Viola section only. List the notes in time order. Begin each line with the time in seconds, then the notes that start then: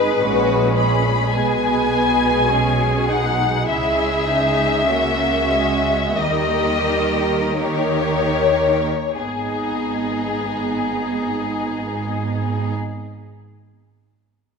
Already playing: G#3 D#4
0.21 C#4
1.36 G#3 B3
1.92 B3
2.50 C#4
3.08 D#4
3.66 E4
4.27 D#4
4.88 A#3 C#4
5.50 G#3
6.15 G3 A#3
6.84 G3
7.57 A#3 D#4
9.16 B3